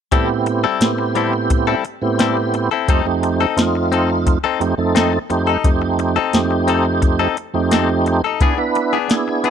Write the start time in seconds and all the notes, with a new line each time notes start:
0.12 A2 G3 B3 C4 E4 G4 A4, kick, closed hi-hat
0.29 muted clean electric guitar stroke
0.46 muted clean electric guitar stroke, closed hi-hat
0.64 G3 C4 E4 A4
0.80 A2 B3 C4 E4 G4, snare, closed hi-hat
0.98 muted clean electric guitar stroke
1.15 G3 C4 E4 A4, closed hi-hat
1.33 muted clean electric guitar stroke
1.50 muted clean electric guitar stroke, kick, closed hi-hat
1.67 G3 C4 E4 A4
1.85 muted clean electric guitar stroke, closed hi-hat
2.01 A2 B3 C4 E4 G4
2.19 G3 C4 E4 A4, snare, closed hi-hat
2.37 muted clean electric guitar stroke
2.54 muted clean electric guitar stroke, closed hi-hat
2.71 C4 E4 A4
2.88 F2 A3 C4 D#4 G4 A4, kick, closed hi-hat
3.05 F2 A3 C4 D#4 G4, muted clean electric guitar stroke
3.23 muted clean electric guitar stroke, closed hi-hat
3.41 C4 D#4 A4
3.57 F2 A3 C4 D#4 F4, snare, closed hi-hat
3.75 muted clean electric guitar stroke
3.92 C4 D#4 A4, closed hi-hat
4.10 muted clean electric guitar stroke
4.26 muted clean electric guitar stroke, kick, closed hi-hat
4.44 C4 D#4 A4
4.60 F2 A3 C4 D#4 G4, muted clean electric guitar stroke, closed hi-hat
4.78 F2 A3 C4 D#4 A4
4.95 C4 D#4 A4, snare, closed hi-hat
5.13 muted clean electric guitar stroke
5.30 F2 A3 C4 D#4 G4, muted clean electric guitar stroke, closed hi-hat
5.47 D#4 A4
5.64 F2 A3 C4 D#4 G4, kick, closed hi-hat
5.82 muted clean electric guitar stroke
5.99 muted clean electric guitar stroke, closed hi-hat
6.16 C4 D#4 A4
6.33 F2 A3 C4 D#4 G4, snare, closed hi-hat
6.51 muted clean electric guitar stroke
6.68 C4 D#4 A4, closed hi-hat
6.85 muted clean electric guitar stroke
7.02 muted clean electric guitar stroke, kick, closed hi-hat
7.19 C4 D#4 A4
7.37 muted clean electric guitar stroke, closed hi-hat
7.54 F2 A3 C4 D#4 G4
7.71 C4 D#4 A4, snare, closed hi-hat
7.89 muted clean electric guitar stroke
8.06 muted clean electric guitar stroke, closed hi-hat
8.24 D#4 A4
8.40 B3 D4 E4 G#4, kick, closed hi-hat
8.57 B3 D4 E4 B4, muted clean electric guitar stroke
8.75 muted clean electric guitar stroke, closed hi-hat
8.93 B3 D4 G#4
9.08 B3 D4 E4 G#4, snare, closed hi-hat
9.28 muted clean electric guitar stroke
9.44 B3 D4 G#4, closed hi-hat